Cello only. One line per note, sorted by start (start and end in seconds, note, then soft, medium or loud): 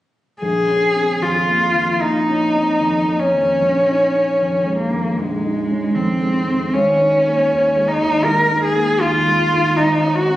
0.42 1.24 G#4 medium
1.23 2.03 F4 soft
2.01 3.21 D#4 soft
3.20 4.77 C#4 medium
4.77 5.19 A#3 soft
5.18 5.97 G#3 soft
5.95 6.74 C4 medium
6.73 7.90 C#4 medium
7.88 8.26 D#4 medium
8.25 8.64 A#4 medium
8.64 9.02 G#4 medium
9.01 9.78 F4 medium
9.77 10.17 D#4 medium
10.15 10.37 F#4 medium